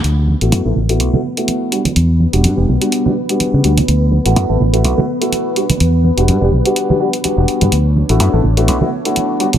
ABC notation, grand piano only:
X:1
M:4/4
L:1/16
Q:"Swing 16ths" 1/4=125
K:D
V:1 name="Grand piano"
z3 [A,B,EF]2 [A,B,EA] z [A,B,EF]2 [A,B,EF] z [A,B,EF]3 [G,B,DF] z | z3 [G,B,DF]2 [G,B,DG] z [G,B,DF]2 [G,B,DF] z [G,B,DF]3 [G,B,DF] z | z3 [A,B,EF]2 [A,B,EA] z [A,B,EF]2 [A,B,EF] z [A,B,EF]3 [G,B,DF] z | z3 [G,B,DF]2 [G,B,DG] z [G,B,DF]2 [G,B,DF] [G,B,DF] z [G,B,DF] [G,B,DF]3 |
z3 [A,B,EF]2 [A,B,EA] z [A,B,EF]2 [A,B,EF] z [A,B,EF]3 [G,B,DF] z |]